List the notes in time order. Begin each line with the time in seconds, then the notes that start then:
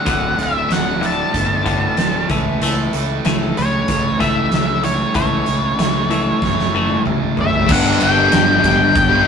Already playing: F#5
0.06 D1 D2 A2 D3, kick, closed hi-hat
0.37 D1 D2 A2 D3, closed hi-hat
0.43 E5
0.69 D1 D2 A2 D3 F#5, snare, closed hi-hat
1.02 D2 A2 D3, closed hi-hat
1.06 A5
1.34 G1 D2 A2 D3, kick, closed hi-hat
1.66 D2 A2 D3, kick, closed hi-hat
1.97 D1 D2 A2 D3, snare, closed hi-hat
2.29 C#2 A2 E3 A3, kick, closed hi-hat
2.62 C#2 A2 E3 A3, closed hi-hat
2.93 C#2 A2 E3 A3, closed hi-hat
3.25 C#2 A2 E3 A3, snare, closed hi-hat
3.57 C#2 A2 E3 A3 C#5, closed hi-hat
3.88 C#2 A2 E3 A3, kick, closed hi-hat
4.20 C#2 A2 E3 A3 E5, kick, closed hi-hat
4.51 C#2 A2 E3 A3, snare, closed hi-hat
4.83 A2 E3 A3 C#5, closed hi-hat
5.14 C#2 A2 E3 A3 C#5, kick, closed hi-hat
5.46 C#2 A2 E3 A3, closed hi-hat
5.78 C#2 A2 E3 A3, snare, closed hi-hat
6.10 A2 E3 A3, closed hi-hat
6.42 F#1 A2 E3 A3, kick, snare
6.59 snare
6.72 A2 E3 A3
6.89 high tom
7.06 C#2 A2 E3 A3, mid tom
7.37 F#1 A2 E3 A3 E5, floor tom
7.53 floor tom
7.66 G1 G2 D3 G3 B3 D4 G4, kick, crash
7.72 F#5
8.00 G1 G5, ride
8.15 G3 B3 D4 G4
8.31 G1 G2 D3 G3 B3 D4 G4, snare, ride
8.63 G1 G3 B3 D4 G4, kick, ride
8.69 G5
8.80 muted distorted electric guitar stroke
8.96 G1, kick, ride
9.09 G3 B3 D4 G4